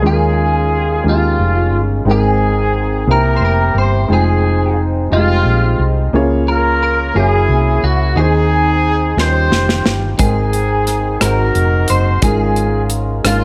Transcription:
0.02 1.01 D#2 medium
0.02 1.01 D#3 soft
0.02 0.83 G#3 medium
0.02 0.83 C#4 medium
0.02 1.02 C#4 soft
0.02 0.83 D#4 medium
0.02 0.84 F4 medium
0.02 1.02 F4 medium
0.02 0.10 G#4 medium
0.06 1.02 G#4 medium
0.06 0.76 G#4 medium
0.11 0.87 A#4 medium
0.76 1.10 G4 medium
1.04 1.36 D#2 medium
1.04 1.84 G#3 soft
1.04 2.03 G#3 medium
1.04 1.85 C#4 soft
1.04 2.04 C#4 medium
1.04 1.85 D#4 soft
1.04 1.86 F4 soft
1.04 1.82 F4 medium
1.04 1.86 G4 medium
1.09 1.80 F4 medium
1.39 1.72 F1 medium
1.72 2.04 G1 medium
2.05 3.04 G#1 medium
2.05 3.04 G#2 soft
2.05 2.86 G#3 medium
2.05 2.87 C4 medium
2.05 3.05 C4 medium
2.05 2.87 D#4 medium
2.05 3.05 D#4 medium
2.05 3.05 G#4 medium
2.05 2.87 A#4 medium
2.05 2.87 G5 medium
2.11 3.11 G#4 medium
3.07 3.39 C2 medium
3.07 4.06 C3 soft
3.07 3.88 A#3 soft
3.07 3.88 C4 soft
3.07 3.15 D#4 soft
3.07 4.07 E4 medium
3.07 3.88 G4 soft
3.07 4.07 G4 medium
3.07 3.77 A#4 medium
3.07 3.89 C5 medium
3.11 3.91 E4 soft
3.11 3.36 A#4 medium
3.37 3.73 F1 medium
3.37 3.43 C5 medium
3.45 3.78 A#4 medium
3.75 4.07 G1 medium
3.75 4.09 C5 medium
3.75 4.12 C5 medium
4.08 5.07 F1 medium
4.08 4.89 G#3 medium
4.08 4.89 D#4 medium
4.08 4.89 F4 medium
4.08 4.90 C5 medium
4.08 4.90 G5 medium
4.12 5.09 C4 soft
4.12 5.09 D#4 medium
4.12 4.79 G#4 medium
4.12 4.75 G#4 medium
5.10 5.43 F1 medium
5.10 5.17 G3 soft
5.10 6.10 G#3 medium
5.10 6.10 C4 medium
5.10 5.91 D#4 soft
5.10 5.91 F4 soft
5.10 5.85 F4 medium
5.10 5.92 G4 soft
5.10 5.92 D#5 medium
5.17 5.94 G#3 soft
5.45 5.77 A#1 medium
5.79 6.11 C2 medium
6.13 7.11 C#2 medium
6.13 7.11 C#3 medium
6.13 6.93 A#3 medium
6.13 6.93 C#4 medium
6.13 6.20 E4 medium
6.13 6.94 G#4 medium
6.13 6.94 C#5 medium
6.21 6.97 F4 medium
6.48 7.12 F4 medium
6.48 6.82 A#4 medium
6.48 7.12 A#4 medium
6.83 7.16 A#4 medium
7.14 7.46 F#1 medium
7.14 7.94 A#3 medium
7.14 8.13 C#4 medium
7.14 7.95 E4 soft
7.14 8.13 E4 medium
7.14 7.95 F#4 soft
7.14 7.85 G#4 medium
7.14 7.95 G#4 soft
7.14 7.80 G#4 medium
7.14 7.95 C#5 medium
7.49 7.80 C2 medium
7.83 8.14 C#2 medium
7.83 8.18 F#4 medium
7.83 8.17 F#4 medium
8.16 9.14 D#2 medium
8.16 9.14 D#3 medium
8.16 9.15 C4 medium
8.16 8.96 D#4 medium
8.16 9.15 D#4 medium
8.16 8.96 G#4 medium
8.16 9.19 G#4 medium
8.16 8.97 C5 medium
9.17 9.49 D#2 medium
9.17 10.16 D#3 soft
9.17 9.98 G3 soft
9.17 9.98 C#4 soft
9.17 9.98 D#4 soft
9.17 9.98 F4 soft
9.17 10.16 F4 medium
9.17 10.16 G4 medium
9.17 9.26 B4 soft
9.17 9.91 C5 medium
9.17 snare soft
9.26 10.02 C5 medium
9.51 9.83 F1 medium
9.51 snare medium
9.69 snare medium
9.86 10.17 G1 medium
9.86 snare medium
10.18 11.17 G#1 medium
10.18 11.17 G#2 soft
10.18 10.98 G#3 medium
10.18 10.99 C4 medium
10.18 10.99 D#4 medium
10.18 11.22 G#4 medium
10.18 11.00 A#4 medium
10.18 11.00 G5 medium
10.18 kick medium
10.18 closed hi-hat medium
10.22 11.18 C4 medium
10.22 11.18 D#4 medium
10.22 11.18 G#4 medium
10.53 closed hi-hat soft
10.87 cross-stick soft
10.87 closed hi-hat soft
11.20 11.52 G#1 medium
11.20 12.19 G#2 soft
11.20 12.00 G#3 soft
11.20 12.01 C4 soft
11.20 12.01 D#4 soft
11.20 12.20 D#4 medium
11.20 12.01 F#4 soft
11.20 12.20 F#4 medium
11.20 11.90 A#4 medium
11.20 12.02 C5 medium
11.20 cross-stick medium
11.20 closed hi-hat medium
11.55 11.86 F1 medium
11.55 closed hi-hat soft
11.88 12.20 F#1 medium
11.88 12.23 C5 medium
11.88 12.24 C5 medium
11.88 closed hi-hat medium
12.22 13.20 G#1 medium
12.22 13.20 G#2 soft
12.22 13.02 G#3 medium
12.22 13.02 C#4 medium
12.22 13.21 C#4 soft
12.22 13.03 D#4 medium
12.22 13.03 F4 medium
12.22 13.21 F4 medium
12.22 12.91 G#4 medium
12.22 12.87 G#4 medium
12.22 13.03 A#4 medium
12.22 kick medium
12.22 closed hi-hat medium
12.56 closed hi-hat soft
12.90 closed hi-hat medium
13.24 13.44 G#1 medium
13.24 13.44 G#3 medium
13.24 13.44 A#3 medium
13.24 13.44 C#4 soft
13.24 13.44 C#4 medium
13.24 13.44 D#4 soft
13.24 13.44 F4 soft
13.24 13.44 F4 medium
13.24 13.44 A#4 medium
13.24 cross-stick medium
13.24 closed hi-hat medium

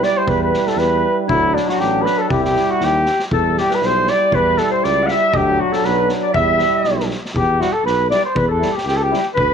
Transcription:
0.00 1.32 G3 medium
0.00 1.29 E4 soft
0.00 0.19 D5 medium
0.00 0.19 D5 loud
0.00 snare soft
0.17 0.31 C5 medium
0.17 0.30 C5 medium
0.27 0.55 E2 medium
0.27 0.42 B4 medium
0.27 0.43 B4 medium
0.27 kick medium
0.42 0.69 B4 medium
0.42 0.70 B4 medium
0.54 snare soft
0.67 0.80 A4 medium
0.67 snare soft
0.76 1.05 E2 medium
0.76 1.18 B4 medium
0.76 snare soft
1.27 1.57 D2 medium
1.27 2.31 F#3 medium
1.27 2.31 D4 medium
1.27 1.55 E4 medium
1.27 kick medium
1.54 1.70 D4 medium
1.54 1.71 D4 medium
1.54 snare soft
1.69 1.80 F#4 medium
1.69 1.82 F#4 medium
1.69 snare soft
1.78 2.06 A1 medium
1.78 2.03 G4 medium
1.78 2.07 G4 medium
1.78 snare soft
2.02 2.20 B4 loud
2.06 2.23 B4 medium
2.06 snare soft
2.18 2.28 A4 medium
2.18 2.32 A4 medium
2.29 2.58 C2 medium
2.29 3.11 G3 medium
2.29 3.11 E4 medium
2.29 2.43 G4 medium
2.29 2.44 G4 medium
2.29 kick medium
2.44 2.72 G4 medium
2.44 snare soft
2.50 2.75 G4 medium
2.56 snare soft
2.70 2.86 F#4 medium
2.70 2.85 F#4 medium
2.80 3.08 D#2 medium
2.80 3.21 G4 medium
2.80 snare soft
2.84 3.22 G4 loud
3.06 snare soft
3.19 snare soft
3.31 3.59 E2 medium
3.31 5.36 G3 medium
3.31 5.30 E4 soft
3.31 3.61 A4 medium
3.31 3.60 A4 medium
3.31 kick medium
3.57 3.72 G4 medium
3.57 3.76 G4 medium
3.57 snare soft
3.70 3.84 B4 medium
3.70 snare soft
3.75 3.87 B4 medium
3.81 4.09 B1 medium
3.81 4.10 C5 medium
3.81 snare soft
3.86 4.11 C5 loud
4.07 4.35 D5 medium
4.07 4.37 D5 loud
4.07 snare soft
4.31 4.59 E2 medium
4.31 4.59 B4 medium
4.31 4.60 B4 medium
4.31 kick medium
4.57 4.70 A4 medium
4.57 4.72 A4 medium
4.57 snare soft
4.71 4.85 C5 medium
4.71 4.86 C5 medium
4.84 5.11 C#2 medium
4.84 5.05 D5 medium
4.84 5.08 D5 medium
4.84 snare soft
5.03 5.10 F#5 soft
5.03 5.13 F#5 medium
5.08 5.36 E5 medium
5.08 5.38 E5 loud
5.08 snare soft
5.32 5.60 D2 medium
5.32 6.38 F#3 medium
5.32 6.34 D4 medium
5.32 5.61 G4 medium
5.32 5.62 G4 loud
5.32 kick medium
5.60 5.74 F#4 medium
5.60 5.78 F#4 medium
5.72 5.86 A4 medium
5.72 5.87 A4 medium
5.72 snare soft
5.83 6.11 B1 medium
5.83 6.10 B4 medium
5.83 snare soft
6.09 snare soft
6.22 6.33 D5 medium
6.26 6.35 D5 medium
6.33 6.63 E2 medium
6.33 7.17 G3 medium
6.33 7.15 E4 medium
6.33 7.06 E5 medium
6.33 7.07 E5 loud
6.33 kick medium
6.59 snare soft
6.84 7.13 B1 medium
6.84 snare soft
7.00 snare soft
7.11 snare soft
7.25 snare soft
7.34 7.62 E2 loud
7.34 7.63 G4 medium
7.34 7.62 G4 medium
7.34 kick medium
7.60 7.71 G3 medium
7.60 7.70 E4 medium
7.60 7.74 F#4 medium
7.60 7.77 F#4 medium
7.60 snare soft
7.72 7.85 A4 medium
7.72 7.86 A4 medium
7.85 8.13 B1 loud
7.85 8.09 B4 medium
7.85 8.10 B4 medium
7.85 snare soft
8.10 8.22 G3 medium
8.10 8.20 E4 medium
8.10 8.24 D5 medium
8.10 snare soft
8.25 8.39 C5 medium
8.25 8.36 C5 medium
8.35 8.63 E2 loud
8.35 8.47 B4 medium
8.35 8.50 B4 medium
8.35 kick medium
8.47 8.73 A4 medium
8.47 8.77 A4 medium
8.59 8.72 G3 medium
8.59 8.69 E4 medium
8.59 snare soft
8.72 8.81 G4 medium
8.72 8.86 G4 medium
8.77 snare soft
8.82 9.13 C#2 loud
8.82 8.93 G4 medium
8.87 8.98 G4 medium
8.87 snare soft
8.92 9.00 A4 medium
8.97 9.24 G4 medium
8.97 9.05 A4 medium
9.03 9.27 G4 medium
9.10 9.21 G3 medium
9.10 9.21 E4 medium
9.10 snare soft
9.34 9.54 D2 medium
9.34 9.54 B4 medium
9.34 9.54 B4 loud
9.34 kick medium

